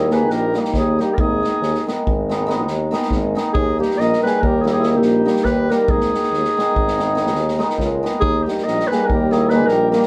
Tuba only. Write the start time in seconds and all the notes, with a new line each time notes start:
Already playing: D#2
0.29 A#1
0.73 D#2
1.18 G#1
1.61 D#2
2.07 G#1
2.66 D#2
3.11 G#1
3.55 D#2
3.99 A#1
4.42 D#2
5.01 A#1
5.45 D#2
5.88 G#1
6.31 D#2
6.74 G#1
7.34 D#2
7.78 C#2
8.21 D#2
8.67 A#1
9.10 D#2
9.67 A#1